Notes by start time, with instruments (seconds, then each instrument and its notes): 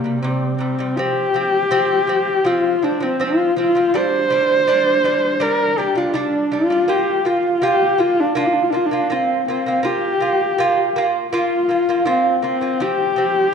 Already playing: horsehead fiddle A#3
0.04 lute C3 G3
0.22 lute C3 G3, horsehead fiddle C4
0.58 lute C3 G3, horsehead fiddle C4
0.79 lute C3 G3
0.96 lute F3 C4, horsehead fiddle G4
1.34 lute F3 C4
1.71 lute F3 C4
2.07 lute F3 C4
2.45 lute F3 C4, horsehead fiddle F4
2.82 lute F3 C4, horsehead fiddle D4
3.00 lute F3 C4, horsehead fiddle C4
3.20 lute F3 C4, horsehead fiddle F4
3.56 lute F3 C4, horsehead fiddle F4
3.75 lute F3 C4
3.94 lute G3 D4, horsehead fiddle C5
4.30 lute G3 D4
4.67 lute G3 D4
5.04 lute G3 D4
5.40 lute G3 D4, horsehead fiddle A#4
5.78 lute G3 D4, horsehead fiddle G4
5.95 lute G3 D4, horsehead fiddle F4
6.14 lute G3 D4, horsehead fiddle D4
6.52 lute G3 D4, horsehead fiddle F4
6.70 lute G3 D4
6.88 lute A#3 F4, horsehead fiddle G4
7.25 lute A#3 F4, horsehead fiddle F4
7.62 lute A#3 F4, horsehead fiddle G4
7.98 lute A#3 F4, horsehead fiddle F4
8.20 horsehead fiddle D4
8.35 lute A#3 F4, horsehead fiddle D4
8.47 horsehead fiddle F4
8.52 horsehead fiddle D4
8.63 horsehead fiddle F4
8.70 lute A#3, horsehead fiddle D4
8.74 lute F4, horsehead fiddle F4
8.85 horsehead fiddle D4
8.91 lute A#3 F4
9.10 lute A#3 F4, horsehead fiddle C4
9.48 lute A#3 F4, horsehead fiddle C4
9.66 lute A#3 F4
9.83 lute A#3 F4, horsehead fiddle G4
10.20 lute A#3 F4
10.58 lute A#3 F4
10.96 lute A#3 F4
11.33 lute A#3 F4, horsehead fiddle F4
11.69 lute A#3 F4
11.89 lute A#3 F4
12.05 lute A#3 F4, horsehead fiddle C4
12.42 lute A#3 F4, horsehead fiddle C4
12.61 lute A#3 F4
12.80 lute F3 C4, horsehead fiddle G4
13.16 lute F3 C4